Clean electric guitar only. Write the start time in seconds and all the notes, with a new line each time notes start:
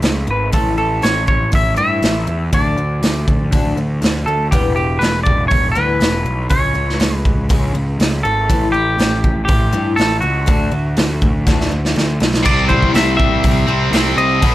0.31 B4
0.54 A4
0.78 A4
1.03 C#5
1.28 C#5
1.55 E5
1.78 E5
2.54 D5
4.26 A4
4.51 G4
4.76 G4
4.99 B4
5.23 D5
5.48 C#5
5.72 B4
6.50 C#5
7.17 B4
8.23 A4
8.72 G4
9.45 G4
9.96 A4
10.20 F#4
12.46 D5
12.69 C5
12.96 E5
13.17 E5
14.18 D#5